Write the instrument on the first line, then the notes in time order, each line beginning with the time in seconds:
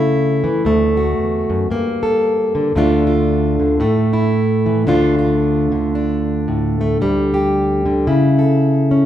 steel-string acoustic guitar
Already playing: C#3 A3 E4
0.44 E3
0.65 D2 A3
0.97 F#4
1.18 E2
1.50 F#2
1.70 G2 A#3
2.03 A4
2.55 D3
2.75 D2 D3 A3 D4 F4
3.07 F4
3.60 D3
3.80 A2 A3
4.13 E4
4.66 E3
4.86 D2 D3 A3 D4 F4
5.19 F4
5.72 D3
5.95 D4
6.48 A2
6.81 A3
7.01 D2 G3
7.34 G4
7.86 D3
8.07 C#3 E4
8.39 A4
8.91 C#4